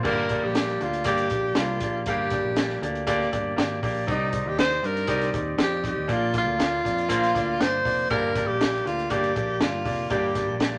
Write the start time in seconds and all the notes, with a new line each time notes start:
0.03 G1 G2 A#3 D4 G4 A#4 D5, kick, crash
0.29 A#3 D4 G4 D5, kick, closed hi-hat
0.43 A#1 G4
0.55 A#3 D4 G4 D5, snare, closed hi-hat
0.68 snare
0.80 D2 A#3 D4 F4 G4 D5, closed hi-hat
0.93 closed hi-hat
1.04 G1 A#3 D4 G4 D5, kick, closed hi-hat
1.17 closed hi-hat
1.30 A#1 A#3 D4 G4, kick, closed hi-hat
1.55 C2 A#3 D4 F4 G4 D5, snare, closed hi-hat
1.80 A#1 A#3 D4 G4 D5, kick, closed hi-hat
2.06 G1 G2 A#3 D4 G4 F5, kick, closed hi-hat
2.10 G4
2.30 A#3 D4 G4 D5, kick, snare, closed hi-hat
2.44 A#1
2.56 A#3 D4 G4 D5, snare, closed hi-hat
2.69 snare
2.81 D2 A#3 D4 G4 D5, closed hi-hat
2.95 closed hi-hat
3.07 A#3 D4 G4 D5, kick, closed hi-hat
3.21 snare
3.32 G1 A#3 D4 G4 D5, kick, closed hi-hat
3.56 G#1 A#3 D4 G4 D5, snare, closed hi-hat
3.83 A#1 A#3 D4 G4 D5, kick, open hi-hat
4.07 C2 C3 C4 D#4 G4 D5, kick, closed hi-hat
4.11 D#4
4.32 C4 D#4 G4 D5, kick, closed hi-hat
4.45 D#2 G4
4.57 C4 D#4 G4 C5 D5, snare, closed hi-hat
4.71 snare
4.82 G2 C4 D#4 G4 A#4 D5, closed hi-hat
4.97 closed hi-hat
5.07 C2 C4 D#4 G4 D5, kick, closed hi-hat
5.21 snare, closed hi-hat
5.33 D#2 C4 D#4 G4 D5, kick, closed hi-hat
5.58 F2 C4 D#4 G4 D5, snare, closed hi-hat
5.63 G4
5.83 C4 D#4 G4 D5, kick, closed hi-hat
5.87 G4
5.96 D#2
6.08 A#1 A#2 A#3 D4 F4 D5, kick, closed hi-hat
6.12 F4
6.33 A#3 D4 F4 D5, kick, snare, closed hi-hat
6.38 F4
6.47 D2
6.58 A#3 D4 F4 D5, snare, closed hi-hat
6.84 F2 A#3 D4 F4 D5, kick, closed hi-hat
6.98 closed hi-hat
7.09 A#1 A#3 D4 F4 C5, kick, closed hi-hat
7.23 snare, closed hi-hat
7.34 D2 A#3 D4 F4 D5, kick, closed hi-hat
7.59 G1 A#3 D4 F4 C5 D5, snare, closed hi-hat
7.85 F1 A#3 D4 F4 D5, kick, open hi-hat
8.10 G1 G2 A#3 D4 G4 A#4 D5, kick, closed hi-hat
8.35 A#3 D4 G4 D5, kick, snare, closed hi-hat
8.47 A#1 G4
8.60 A#3 D4 G4 D5, snare, closed hi-hat
8.74 snare
8.84 D2 A#3 D4 F4 G4 D5, closed hi-hat
8.99 closed hi-hat
9.10 G1 A#3 D4 G4 D5, kick, closed hi-hat
9.24 closed hi-hat
9.35 A#1 A#3 D4 G4 D5, kick, closed hi-hat
9.60 G1 A#3 D4 F4 G4 D5, snare, closed hi-hat
9.85 F1 A#3 D4 G4 D5, kick, open hi-hat
10.10 G1 G2 A#3 D4 G4 D5, kick, closed hi-hat
10.35 A#3 D4 G4 D5, kick, snare, closed hi-hat
10.48 A#1
10.60 A#3 D4 G4 D5, snare, closed hi-hat